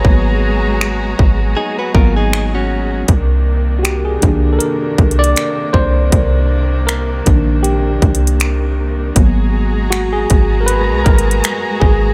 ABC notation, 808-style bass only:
X:1
M:4/4
L:1/16
Q:"Swing 16ths" 1/4=79
K:Cm
V:1 name="808-style bass" clef=bass
A,,,6 A,,,2 z2 A,,,6 | C,,6 C,,2 z2 C,,2 z2 C,,2 | C,,6 B,,,4 C,,6 | A,,,6 A,,,3 _C,, A,,,2 z2 A,,,2 |]